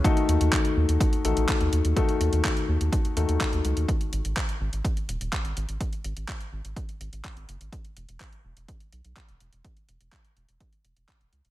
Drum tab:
HH |xxxxxx-xxxxxxxxx|xxxxxx-xxxxxxxxx|xxxxxx-xxxxxxxxx|xxxxxx-xxxxxxxxx|
CP |----x-------x---|----x-------x---|----x-------x---|----x-------x---|
BD |o---o---o---o---|o---o---o---o---|o---o---o---o---|o---o---o---o---|

HH |xxxxxx-xxxxxxxxx|xxxxxxxxxxxxxxxx|
CP |----x-------x---|----x-------x---|
BD |o---o---o---o---|o---o---o---o---|